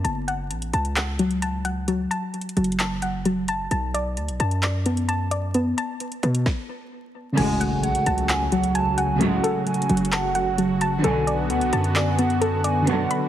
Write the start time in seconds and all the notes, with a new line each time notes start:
0.04 F#1 A5, closed hi-hat
0.28 F#5, closed hi-hat
0.51 A1, closed hi-hat
0.62 closed hi-hat
0.73 C#2 A5, closed hi-hat
0.85 closed hi-hat
0.96 F#5, clap, closed hi-hat
1.19 F#3, closed hi-hat
1.31 closed hi-hat
1.42 A5, closed hi-hat
1.65 F#5, closed hi-hat
1.88 F#3, closed hi-hat
2.11 A5, closed hi-hat
2.34 closed hi-hat
2.41 closed hi-hat
2.49 closed hi-hat
2.57 F#1 F#3, closed hi-hat
2.64 closed hi-hat
2.72 closed hi-hat
2.79 A5, clap, closed hi-hat
3.02 F#5, closed hi-hat
3.25 F#3, closed hi-hat
3.48 A5, closed hi-hat
3.71 B1 A5, closed hi-hat
3.94 D5, closed hi-hat
4.17 D2, closed hi-hat
4.28 B1, closed hi-hat
4.40 F#2 A5, closed hi-hat
4.51 closed hi-hat
4.63 D5, clap, closed hi-hat
4.86 B3, closed hi-hat
4.97 closed hi-hat
5.09 A5, closed hi-hat
5.31 D5, closed hi-hat
5.54 B3, closed hi-hat
5.78 A5, closed hi-hat
6.00 closed hi-hat
6.12 closed hi-hat
6.23 B2 B3, closed hi-hat
6.35 closed hi-hat
6.46 kick, snare
7.32 C#3 A3
7.37 F#1 A2 C#3 F#3 G#3 F#4 G#5, closed hi-hat, crash, impact
7.43 G#3
7.60 F#5, closed hi-hat
7.83 A1 F#5, closed hi-hat
7.95 closed hi-hat
8.06 C#2 A5, closed hi-hat
8.18 closed hi-hat
8.29 F#5 G#5, clap, closed hi-hat
8.52 F#3 F#5, closed hi-hat
8.64 closed hi-hat
8.75 G#5 A5, closed hi-hat
8.98 F#5 G#5, closed hi-hat
9.16 C#3 A3
9.21 A2 C#3 F#3 G#3 F#4 F#5, closed hi-hat
9.43 A4, closed hi-hat
9.67 G#5, closed hi-hat
9.74 closed hi-hat
9.82 closed hi-hat
9.89 F#1 F#3, closed hi-hat
9.97 closed hi-hat
10.05 closed hi-hat
10.12 F#5 A5, clap, closed hi-hat
10.35 F#5, closed hi-hat
10.58 F#3, closed hi-hat
10.81 A5, closed hi-hat
10.99 D3 B3
11.04 B1 B2 D3 F#3 B3 F#4 A4 G#5, closed hi-hat
11.09 A4
11.27 D5, closed hi-hat
11.50 D2 F#5, closed hi-hat
11.61 B1, closed hi-hat
11.73 F#2 A5, closed hi-hat
11.84 closed hi-hat
11.95 D5 G#5, clap, closed hi-hat
12.19 B3 F#5, closed hi-hat
12.30 closed hi-hat
12.41 A4 A5, closed hi-hat
12.64 D5 G#5, closed hi-hat
12.82 D3 B3
12.87 B2 D3 F#3 B3 D4 F#4 F#5, closed hi-hat
12.92 A4
13.11 B5, closed hi-hat